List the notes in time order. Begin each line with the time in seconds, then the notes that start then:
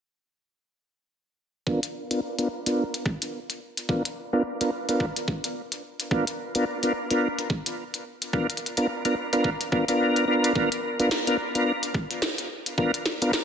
1.67 B3 D4 F4 A#4, kick
1.83 closed hi-hat
2.11 B3 D4 F4 A#4, closed hi-hat
2.38 B3 D4 F4 A#4, closed hi-hat
2.66 B3 D4 F4 A#4, closed hi-hat
2.94 closed hi-hat
3.06 kick
3.22 closed hi-hat
3.50 closed hi-hat
3.77 closed hi-hat
3.89 B3 D4 F4 A#4, kick
4.05 closed hi-hat
4.33 B3 D4 F4 A#4
4.61 B3 D4 F4 A#4, closed hi-hat
4.89 B3 D4 F4 A#4, closed hi-hat
5.00 kick
5.16 closed hi-hat
5.28 kick
5.44 closed hi-hat
5.72 closed hi-hat
6.00 closed hi-hat
6.11 B3 D4 F4 A#4, kick
6.27 closed hi-hat
6.55 B3 D4 F4 A#4, closed hi-hat
6.83 B3 D4 F4 A#4, closed hi-hat
7.11 B3 D4 F4 A#4, closed hi-hat
7.39 closed hi-hat
7.50 kick
7.66 closed hi-hat
7.94 closed hi-hat
8.22 closed hi-hat
8.33 B3 D4 F4 A#4, kick
8.50 closed hi-hat
8.57 closed hi-hat
8.66 closed hi-hat
8.77 B3 D4 F4 A#4, closed hi-hat
9.05 B3 D4 F4 A#4, closed hi-hat
9.33 B3 D4 F4 A#4, closed hi-hat
9.44 kick
9.61 closed hi-hat
9.72 B3 D4 F4 A#4, kick
9.88 B3 D4 F4 A#4, closed hi-hat
10.16 closed hi-hat
10.28 B3 D4 F4 A#4
10.44 closed hi-hat
10.55 B3 D4 F4 A#4, kick
10.72 closed hi-hat
11.00 B3 D4 F4 A#4, closed hi-hat
11.11 snare
11.27 B3 D4 F4 A#4, closed hi-hat
11.55 B3 D4 F4 A#4, closed hi-hat
11.83 closed hi-hat
11.94 kick
12.11 closed hi-hat
12.22 snare
12.38 closed hi-hat
12.66 closed hi-hat
12.78 B3 D4 F4 A#4, kick
12.94 closed hi-hat
13.06 snare
13.22 B3 D4 F4 A#4, closed hi-hat
13.33 snare